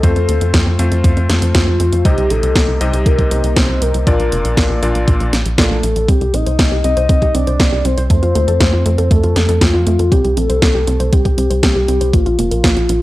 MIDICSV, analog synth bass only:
0, 0, Header, 1, 2, 480
1, 0, Start_track
1, 0, Tempo, 504202
1, 33, Time_signature, 4, 2, 24, 8
1, 12397, End_track
2, 0, Start_track
2, 0, Title_t, "Analog synth bass"
2, 0, Program_c, 0, 38
2, 32, Note_on_c, 0, 41, 104
2, 140, Note_off_c, 0, 41, 0
2, 153, Note_on_c, 0, 41, 76
2, 260, Note_off_c, 0, 41, 0
2, 273, Note_on_c, 0, 39, 92
2, 380, Note_off_c, 0, 39, 0
2, 394, Note_on_c, 0, 41, 80
2, 501, Note_off_c, 0, 41, 0
2, 512, Note_on_c, 0, 41, 97
2, 620, Note_off_c, 0, 41, 0
2, 633, Note_on_c, 0, 41, 78
2, 740, Note_off_c, 0, 41, 0
2, 753, Note_on_c, 0, 41, 96
2, 860, Note_off_c, 0, 41, 0
2, 873, Note_on_c, 0, 41, 81
2, 980, Note_off_c, 0, 41, 0
2, 993, Note_on_c, 0, 41, 98
2, 1100, Note_off_c, 0, 41, 0
2, 1113, Note_on_c, 0, 41, 78
2, 1220, Note_off_c, 0, 41, 0
2, 1233, Note_on_c, 0, 41, 84
2, 1340, Note_off_c, 0, 41, 0
2, 1353, Note_on_c, 0, 41, 80
2, 1460, Note_off_c, 0, 41, 0
2, 1473, Note_on_c, 0, 41, 101
2, 1580, Note_off_c, 0, 41, 0
2, 1593, Note_on_c, 0, 41, 73
2, 1701, Note_off_c, 0, 41, 0
2, 1714, Note_on_c, 0, 41, 93
2, 1821, Note_off_c, 0, 41, 0
2, 1834, Note_on_c, 0, 41, 82
2, 1941, Note_off_c, 0, 41, 0
2, 1953, Note_on_c, 0, 36, 106
2, 2060, Note_off_c, 0, 36, 0
2, 2073, Note_on_c, 0, 36, 77
2, 2180, Note_off_c, 0, 36, 0
2, 2193, Note_on_c, 0, 34, 94
2, 2301, Note_off_c, 0, 34, 0
2, 2313, Note_on_c, 0, 36, 77
2, 2420, Note_off_c, 0, 36, 0
2, 2433, Note_on_c, 0, 36, 96
2, 2541, Note_off_c, 0, 36, 0
2, 2553, Note_on_c, 0, 36, 74
2, 2660, Note_off_c, 0, 36, 0
2, 2672, Note_on_c, 0, 36, 96
2, 2780, Note_off_c, 0, 36, 0
2, 2793, Note_on_c, 0, 36, 85
2, 2900, Note_off_c, 0, 36, 0
2, 2913, Note_on_c, 0, 36, 98
2, 3021, Note_off_c, 0, 36, 0
2, 3033, Note_on_c, 0, 36, 82
2, 3140, Note_off_c, 0, 36, 0
2, 3152, Note_on_c, 0, 36, 87
2, 3260, Note_off_c, 0, 36, 0
2, 3273, Note_on_c, 0, 36, 82
2, 3380, Note_off_c, 0, 36, 0
2, 3393, Note_on_c, 0, 36, 102
2, 3500, Note_off_c, 0, 36, 0
2, 3513, Note_on_c, 0, 36, 74
2, 3620, Note_off_c, 0, 36, 0
2, 3633, Note_on_c, 0, 36, 100
2, 3740, Note_off_c, 0, 36, 0
2, 3753, Note_on_c, 0, 36, 81
2, 3860, Note_off_c, 0, 36, 0
2, 3873, Note_on_c, 0, 34, 99
2, 3981, Note_off_c, 0, 34, 0
2, 3993, Note_on_c, 0, 34, 76
2, 4100, Note_off_c, 0, 34, 0
2, 4114, Note_on_c, 0, 29, 91
2, 4221, Note_off_c, 0, 29, 0
2, 4234, Note_on_c, 0, 34, 77
2, 4341, Note_off_c, 0, 34, 0
2, 4353, Note_on_c, 0, 34, 101
2, 4460, Note_off_c, 0, 34, 0
2, 4474, Note_on_c, 0, 34, 76
2, 4581, Note_off_c, 0, 34, 0
2, 4593, Note_on_c, 0, 34, 95
2, 4701, Note_off_c, 0, 34, 0
2, 4713, Note_on_c, 0, 34, 80
2, 4821, Note_off_c, 0, 34, 0
2, 4833, Note_on_c, 0, 34, 100
2, 4941, Note_off_c, 0, 34, 0
2, 4954, Note_on_c, 0, 34, 81
2, 5061, Note_off_c, 0, 34, 0
2, 5073, Note_on_c, 0, 34, 89
2, 5180, Note_off_c, 0, 34, 0
2, 5194, Note_on_c, 0, 34, 79
2, 5301, Note_off_c, 0, 34, 0
2, 5313, Note_on_c, 0, 34, 96
2, 5421, Note_off_c, 0, 34, 0
2, 5433, Note_on_c, 0, 34, 72
2, 5541, Note_off_c, 0, 34, 0
2, 5554, Note_on_c, 0, 34, 95
2, 5661, Note_off_c, 0, 34, 0
2, 5673, Note_on_c, 0, 34, 80
2, 5781, Note_off_c, 0, 34, 0
2, 5793, Note_on_c, 0, 36, 102
2, 5900, Note_off_c, 0, 36, 0
2, 5914, Note_on_c, 0, 36, 78
2, 6021, Note_off_c, 0, 36, 0
2, 6033, Note_on_c, 0, 34, 90
2, 6140, Note_off_c, 0, 34, 0
2, 6153, Note_on_c, 0, 36, 77
2, 6260, Note_off_c, 0, 36, 0
2, 6273, Note_on_c, 0, 36, 100
2, 6380, Note_off_c, 0, 36, 0
2, 6392, Note_on_c, 0, 36, 79
2, 6500, Note_off_c, 0, 36, 0
2, 6512, Note_on_c, 0, 36, 97
2, 6620, Note_off_c, 0, 36, 0
2, 6633, Note_on_c, 0, 36, 87
2, 6740, Note_off_c, 0, 36, 0
2, 6753, Note_on_c, 0, 36, 101
2, 6860, Note_off_c, 0, 36, 0
2, 6872, Note_on_c, 0, 36, 77
2, 6980, Note_off_c, 0, 36, 0
2, 6992, Note_on_c, 0, 36, 89
2, 7100, Note_off_c, 0, 36, 0
2, 7112, Note_on_c, 0, 36, 79
2, 7220, Note_off_c, 0, 36, 0
2, 7232, Note_on_c, 0, 36, 100
2, 7340, Note_off_c, 0, 36, 0
2, 7351, Note_on_c, 0, 36, 75
2, 7460, Note_off_c, 0, 36, 0
2, 7472, Note_on_c, 0, 36, 99
2, 7580, Note_off_c, 0, 36, 0
2, 7592, Note_on_c, 0, 36, 80
2, 7700, Note_off_c, 0, 36, 0
2, 7712, Note_on_c, 0, 41, 102
2, 7820, Note_off_c, 0, 41, 0
2, 7833, Note_on_c, 0, 41, 74
2, 7940, Note_off_c, 0, 41, 0
2, 7953, Note_on_c, 0, 39, 92
2, 8060, Note_off_c, 0, 39, 0
2, 8074, Note_on_c, 0, 41, 77
2, 8181, Note_off_c, 0, 41, 0
2, 8192, Note_on_c, 0, 41, 99
2, 8300, Note_off_c, 0, 41, 0
2, 8313, Note_on_c, 0, 41, 80
2, 8421, Note_off_c, 0, 41, 0
2, 8433, Note_on_c, 0, 41, 97
2, 8540, Note_off_c, 0, 41, 0
2, 8553, Note_on_c, 0, 41, 83
2, 8660, Note_off_c, 0, 41, 0
2, 8673, Note_on_c, 0, 41, 101
2, 8780, Note_off_c, 0, 41, 0
2, 8793, Note_on_c, 0, 41, 76
2, 8900, Note_off_c, 0, 41, 0
2, 8912, Note_on_c, 0, 41, 94
2, 9020, Note_off_c, 0, 41, 0
2, 9032, Note_on_c, 0, 41, 83
2, 9140, Note_off_c, 0, 41, 0
2, 9152, Note_on_c, 0, 41, 100
2, 9260, Note_off_c, 0, 41, 0
2, 9274, Note_on_c, 0, 41, 76
2, 9381, Note_off_c, 0, 41, 0
2, 9393, Note_on_c, 0, 41, 96
2, 9500, Note_off_c, 0, 41, 0
2, 9513, Note_on_c, 0, 41, 78
2, 9620, Note_off_c, 0, 41, 0
2, 9633, Note_on_c, 0, 36, 101
2, 9740, Note_off_c, 0, 36, 0
2, 9753, Note_on_c, 0, 36, 78
2, 9860, Note_off_c, 0, 36, 0
2, 9872, Note_on_c, 0, 34, 98
2, 9980, Note_off_c, 0, 34, 0
2, 9993, Note_on_c, 0, 36, 79
2, 10100, Note_off_c, 0, 36, 0
2, 10112, Note_on_c, 0, 36, 94
2, 10220, Note_off_c, 0, 36, 0
2, 10232, Note_on_c, 0, 36, 72
2, 10340, Note_off_c, 0, 36, 0
2, 10352, Note_on_c, 0, 36, 96
2, 10460, Note_off_c, 0, 36, 0
2, 10471, Note_on_c, 0, 36, 84
2, 10580, Note_off_c, 0, 36, 0
2, 10593, Note_on_c, 0, 36, 100
2, 10700, Note_off_c, 0, 36, 0
2, 10712, Note_on_c, 0, 36, 80
2, 10820, Note_off_c, 0, 36, 0
2, 10832, Note_on_c, 0, 36, 88
2, 10940, Note_off_c, 0, 36, 0
2, 10952, Note_on_c, 0, 36, 81
2, 11060, Note_off_c, 0, 36, 0
2, 11072, Note_on_c, 0, 36, 105
2, 11180, Note_off_c, 0, 36, 0
2, 11193, Note_on_c, 0, 36, 75
2, 11300, Note_off_c, 0, 36, 0
2, 11313, Note_on_c, 0, 36, 100
2, 11420, Note_off_c, 0, 36, 0
2, 11433, Note_on_c, 0, 36, 78
2, 11540, Note_off_c, 0, 36, 0
2, 11553, Note_on_c, 0, 34, 103
2, 11660, Note_off_c, 0, 34, 0
2, 11674, Note_on_c, 0, 34, 76
2, 11781, Note_off_c, 0, 34, 0
2, 11793, Note_on_c, 0, 29, 95
2, 11901, Note_off_c, 0, 29, 0
2, 11913, Note_on_c, 0, 34, 76
2, 12020, Note_off_c, 0, 34, 0
2, 12032, Note_on_c, 0, 34, 98
2, 12140, Note_off_c, 0, 34, 0
2, 12152, Note_on_c, 0, 34, 81
2, 12260, Note_off_c, 0, 34, 0
2, 12272, Note_on_c, 0, 34, 98
2, 12380, Note_off_c, 0, 34, 0
2, 12397, End_track
0, 0, End_of_file